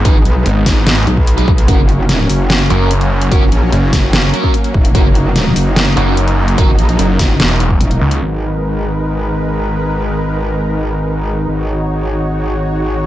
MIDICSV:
0, 0, Header, 1, 6, 480
1, 0, Start_track
1, 0, Key_signature, 5, "minor"
1, 0, Tempo, 408163
1, 60, Time_signature, 4, 2, 24, 8
1, 15363, End_track
2, 0, Start_track
2, 0, Title_t, "Distorted electric guitar"
2, 0, Program_c, 0, 30
2, 56, Note_on_c, 0, 63, 102
2, 61, Note_on_c, 0, 68, 78
2, 66, Note_on_c, 0, 71, 96
2, 193, Note_off_c, 0, 63, 0
2, 193, Note_off_c, 0, 68, 0
2, 193, Note_off_c, 0, 71, 0
2, 1618, Note_on_c, 0, 71, 106
2, 1621, Note_on_c, 0, 68, 83
2, 1626, Note_on_c, 0, 63, 88
2, 1752, Note_off_c, 0, 68, 0
2, 1752, Note_off_c, 0, 71, 0
2, 1753, Note_off_c, 0, 63, 0
2, 1976, Note_on_c, 0, 61, 89
2, 1981, Note_on_c, 0, 66, 75
2, 1987, Note_on_c, 0, 70, 85
2, 2113, Note_off_c, 0, 61, 0
2, 2113, Note_off_c, 0, 66, 0
2, 2113, Note_off_c, 0, 70, 0
2, 3176, Note_on_c, 0, 70, 96
2, 3183, Note_on_c, 0, 66, 74
2, 3187, Note_on_c, 0, 61, 76
2, 3393, Note_off_c, 0, 61, 0
2, 3393, Note_off_c, 0, 66, 0
2, 3393, Note_off_c, 0, 70, 0
2, 3896, Note_on_c, 0, 61, 92
2, 3902, Note_on_c, 0, 66, 77
2, 3907, Note_on_c, 0, 70, 92
2, 4033, Note_off_c, 0, 61, 0
2, 4033, Note_off_c, 0, 66, 0
2, 4033, Note_off_c, 0, 70, 0
2, 5097, Note_on_c, 0, 70, 95
2, 5101, Note_on_c, 0, 66, 66
2, 5105, Note_on_c, 0, 61, 72
2, 5312, Note_off_c, 0, 61, 0
2, 5312, Note_off_c, 0, 66, 0
2, 5312, Note_off_c, 0, 70, 0
2, 5817, Note_on_c, 0, 61, 85
2, 5820, Note_on_c, 0, 66, 78
2, 5825, Note_on_c, 0, 70, 80
2, 5953, Note_off_c, 0, 61, 0
2, 5953, Note_off_c, 0, 66, 0
2, 5953, Note_off_c, 0, 70, 0
2, 7016, Note_on_c, 0, 70, 95
2, 7020, Note_on_c, 0, 66, 74
2, 7026, Note_on_c, 0, 61, 75
2, 7232, Note_off_c, 0, 66, 0
2, 7233, Note_off_c, 0, 61, 0
2, 7233, Note_off_c, 0, 70, 0
2, 7735, Note_on_c, 0, 61, 87
2, 7742, Note_on_c, 0, 66, 83
2, 7746, Note_on_c, 0, 70, 105
2, 7873, Note_off_c, 0, 61, 0
2, 7873, Note_off_c, 0, 66, 0
2, 7873, Note_off_c, 0, 70, 0
2, 15363, End_track
3, 0, Start_track
3, 0, Title_t, "Supersaw synth"
3, 0, Program_c, 1, 81
3, 0, Note_on_c, 1, 56, 85
3, 0, Note_on_c, 1, 59, 78
3, 0, Note_on_c, 1, 63, 91
3, 1933, Note_off_c, 1, 56, 0
3, 1933, Note_off_c, 1, 59, 0
3, 1933, Note_off_c, 1, 63, 0
3, 1980, Note_on_c, 1, 54, 83
3, 1980, Note_on_c, 1, 58, 77
3, 1980, Note_on_c, 1, 61, 92
3, 5781, Note_off_c, 1, 61, 0
3, 5819, Note_on_c, 1, 63, 93
3, 9613, Note_off_c, 1, 54, 0
3, 9613, Note_off_c, 1, 58, 0
3, 9621, Note_off_c, 1, 63, 0
3, 9660, Note_on_c, 1, 71, 90
3, 9661, Note_on_c, 1, 63, 71
3, 9661, Note_on_c, 1, 70, 73
3, 9662, Note_on_c, 1, 56, 81
3, 13462, Note_off_c, 1, 56, 0
3, 13462, Note_off_c, 1, 70, 0
3, 13462, Note_off_c, 1, 71, 0
3, 13498, Note_on_c, 1, 66, 73
3, 13499, Note_on_c, 1, 73, 87
3, 15363, Note_off_c, 1, 63, 0
3, 15363, Note_off_c, 1, 66, 0
3, 15363, Note_off_c, 1, 73, 0
3, 15363, End_track
4, 0, Start_track
4, 0, Title_t, "Detuned saw bass"
4, 0, Program_c, 2, 39
4, 539, Note_on_c, 2, 32, 98
4, 760, Note_off_c, 2, 32, 0
4, 779, Note_on_c, 2, 32, 97
4, 1240, Note_off_c, 2, 32, 0
4, 3179, Note_on_c, 2, 30, 100
4, 3880, Note_off_c, 2, 30, 0
4, 4380, Note_on_c, 2, 30, 96
4, 4600, Note_off_c, 2, 30, 0
4, 7020, Note_on_c, 2, 30, 101
4, 7720, Note_off_c, 2, 30, 0
4, 8220, Note_on_c, 2, 30, 98
4, 8441, Note_off_c, 2, 30, 0
4, 8700, Note_on_c, 2, 28, 99
4, 9161, Note_off_c, 2, 28, 0
4, 9420, Note_on_c, 2, 37, 101
4, 9641, Note_off_c, 2, 37, 0
4, 15363, End_track
5, 0, Start_track
5, 0, Title_t, "Wobble bass"
5, 0, Program_c, 3, 39
5, 59, Note_on_c, 3, 32, 98
5, 280, Note_off_c, 3, 32, 0
5, 299, Note_on_c, 3, 35, 101
5, 520, Note_off_c, 3, 35, 0
5, 1259, Note_on_c, 3, 35, 101
5, 1960, Note_off_c, 3, 35, 0
5, 1979, Note_on_c, 3, 30, 101
5, 2680, Note_off_c, 3, 30, 0
5, 2700, Note_on_c, 3, 30, 96
5, 3161, Note_off_c, 3, 30, 0
5, 3900, Note_on_c, 3, 30, 98
5, 4120, Note_off_c, 3, 30, 0
5, 4139, Note_on_c, 3, 34, 101
5, 4360, Note_off_c, 3, 34, 0
5, 4620, Note_on_c, 3, 30, 101
5, 5080, Note_off_c, 3, 30, 0
5, 5579, Note_on_c, 3, 28, 96
5, 5800, Note_off_c, 3, 28, 0
5, 5819, Note_on_c, 3, 30, 98
5, 6520, Note_off_c, 3, 30, 0
5, 6539, Note_on_c, 3, 30, 97
5, 7000, Note_off_c, 3, 30, 0
5, 7739, Note_on_c, 3, 30, 101
5, 7960, Note_off_c, 3, 30, 0
5, 7979, Note_on_c, 3, 34, 101
5, 8200, Note_off_c, 3, 34, 0
5, 8460, Note_on_c, 3, 30, 100
5, 8680, Note_off_c, 3, 30, 0
5, 9179, Note_on_c, 3, 28, 101
5, 9400, Note_off_c, 3, 28, 0
5, 9659, Note_on_c, 3, 32, 85
5, 13476, Note_off_c, 3, 32, 0
5, 13500, Note_on_c, 3, 32, 89
5, 15363, Note_off_c, 3, 32, 0
5, 15363, End_track
6, 0, Start_track
6, 0, Title_t, "Drums"
6, 59, Note_on_c, 9, 36, 125
6, 59, Note_on_c, 9, 42, 80
6, 176, Note_off_c, 9, 36, 0
6, 177, Note_off_c, 9, 42, 0
6, 299, Note_on_c, 9, 42, 53
6, 416, Note_off_c, 9, 42, 0
6, 538, Note_on_c, 9, 42, 82
6, 656, Note_off_c, 9, 42, 0
6, 778, Note_on_c, 9, 38, 66
6, 778, Note_on_c, 9, 46, 92
6, 779, Note_on_c, 9, 36, 64
6, 896, Note_off_c, 9, 36, 0
6, 896, Note_off_c, 9, 38, 0
6, 896, Note_off_c, 9, 46, 0
6, 1019, Note_on_c, 9, 38, 127
6, 1019, Note_on_c, 9, 42, 83
6, 1136, Note_off_c, 9, 38, 0
6, 1136, Note_off_c, 9, 42, 0
6, 1259, Note_on_c, 9, 42, 54
6, 1376, Note_off_c, 9, 42, 0
6, 1380, Note_on_c, 9, 36, 63
6, 1497, Note_off_c, 9, 36, 0
6, 1498, Note_on_c, 9, 42, 82
6, 1616, Note_off_c, 9, 42, 0
6, 1620, Note_on_c, 9, 42, 36
6, 1738, Note_off_c, 9, 42, 0
6, 1739, Note_on_c, 9, 36, 114
6, 1856, Note_off_c, 9, 36, 0
6, 1860, Note_on_c, 9, 42, 64
6, 1978, Note_off_c, 9, 42, 0
6, 1979, Note_on_c, 9, 36, 116
6, 1979, Note_on_c, 9, 42, 78
6, 2097, Note_off_c, 9, 36, 0
6, 2097, Note_off_c, 9, 42, 0
6, 2220, Note_on_c, 9, 42, 50
6, 2337, Note_off_c, 9, 42, 0
6, 2459, Note_on_c, 9, 38, 62
6, 2459, Note_on_c, 9, 42, 78
6, 2577, Note_off_c, 9, 38, 0
6, 2577, Note_off_c, 9, 42, 0
6, 2699, Note_on_c, 9, 46, 90
6, 2817, Note_off_c, 9, 46, 0
6, 2939, Note_on_c, 9, 38, 126
6, 2939, Note_on_c, 9, 42, 79
6, 3056, Note_off_c, 9, 38, 0
6, 3056, Note_off_c, 9, 42, 0
6, 3180, Note_on_c, 9, 42, 52
6, 3297, Note_off_c, 9, 42, 0
6, 3419, Note_on_c, 9, 42, 78
6, 3537, Note_off_c, 9, 42, 0
6, 3540, Note_on_c, 9, 42, 36
6, 3658, Note_off_c, 9, 42, 0
6, 3780, Note_on_c, 9, 42, 62
6, 3898, Note_off_c, 9, 42, 0
6, 3899, Note_on_c, 9, 42, 77
6, 3900, Note_on_c, 9, 36, 117
6, 4017, Note_off_c, 9, 36, 0
6, 4017, Note_off_c, 9, 42, 0
6, 4140, Note_on_c, 9, 42, 50
6, 4257, Note_off_c, 9, 42, 0
6, 4380, Note_on_c, 9, 42, 78
6, 4498, Note_off_c, 9, 42, 0
6, 4619, Note_on_c, 9, 36, 62
6, 4620, Note_on_c, 9, 38, 62
6, 4620, Note_on_c, 9, 46, 94
6, 4737, Note_off_c, 9, 36, 0
6, 4738, Note_off_c, 9, 38, 0
6, 4738, Note_off_c, 9, 46, 0
6, 4860, Note_on_c, 9, 38, 121
6, 4860, Note_on_c, 9, 42, 81
6, 4978, Note_off_c, 9, 38, 0
6, 4978, Note_off_c, 9, 42, 0
6, 5100, Note_on_c, 9, 42, 52
6, 5217, Note_off_c, 9, 42, 0
6, 5220, Note_on_c, 9, 36, 62
6, 5338, Note_off_c, 9, 36, 0
6, 5339, Note_on_c, 9, 42, 78
6, 5457, Note_off_c, 9, 42, 0
6, 5461, Note_on_c, 9, 42, 37
6, 5578, Note_off_c, 9, 42, 0
6, 5579, Note_on_c, 9, 36, 105
6, 5697, Note_off_c, 9, 36, 0
6, 5701, Note_on_c, 9, 42, 62
6, 5818, Note_off_c, 9, 42, 0
6, 5819, Note_on_c, 9, 36, 116
6, 5820, Note_on_c, 9, 42, 78
6, 5937, Note_off_c, 9, 36, 0
6, 5937, Note_off_c, 9, 42, 0
6, 6059, Note_on_c, 9, 42, 52
6, 6177, Note_off_c, 9, 42, 0
6, 6300, Note_on_c, 9, 38, 60
6, 6300, Note_on_c, 9, 42, 77
6, 6418, Note_off_c, 9, 38, 0
6, 6418, Note_off_c, 9, 42, 0
6, 6539, Note_on_c, 9, 46, 95
6, 6657, Note_off_c, 9, 46, 0
6, 6779, Note_on_c, 9, 38, 123
6, 6779, Note_on_c, 9, 42, 81
6, 6896, Note_off_c, 9, 38, 0
6, 6896, Note_off_c, 9, 42, 0
6, 7019, Note_on_c, 9, 42, 54
6, 7137, Note_off_c, 9, 42, 0
6, 7260, Note_on_c, 9, 42, 78
6, 7377, Note_off_c, 9, 42, 0
6, 7381, Note_on_c, 9, 42, 37
6, 7499, Note_off_c, 9, 42, 0
6, 7620, Note_on_c, 9, 42, 62
6, 7738, Note_off_c, 9, 42, 0
6, 7739, Note_on_c, 9, 36, 118
6, 7739, Note_on_c, 9, 42, 79
6, 7857, Note_off_c, 9, 36, 0
6, 7857, Note_off_c, 9, 42, 0
6, 7980, Note_on_c, 9, 42, 54
6, 8097, Note_off_c, 9, 42, 0
6, 8101, Note_on_c, 9, 42, 38
6, 8218, Note_off_c, 9, 42, 0
6, 8220, Note_on_c, 9, 42, 83
6, 8338, Note_off_c, 9, 42, 0
6, 8459, Note_on_c, 9, 36, 59
6, 8460, Note_on_c, 9, 38, 60
6, 8460, Note_on_c, 9, 46, 100
6, 8577, Note_off_c, 9, 36, 0
6, 8577, Note_off_c, 9, 38, 0
6, 8577, Note_off_c, 9, 46, 0
6, 8700, Note_on_c, 9, 38, 119
6, 8700, Note_on_c, 9, 42, 82
6, 8818, Note_off_c, 9, 38, 0
6, 8818, Note_off_c, 9, 42, 0
6, 8940, Note_on_c, 9, 42, 57
6, 9058, Note_off_c, 9, 42, 0
6, 9060, Note_on_c, 9, 36, 61
6, 9178, Note_off_c, 9, 36, 0
6, 9180, Note_on_c, 9, 42, 83
6, 9297, Note_off_c, 9, 42, 0
6, 9301, Note_on_c, 9, 42, 38
6, 9418, Note_off_c, 9, 42, 0
6, 9541, Note_on_c, 9, 42, 67
6, 9658, Note_off_c, 9, 42, 0
6, 15363, End_track
0, 0, End_of_file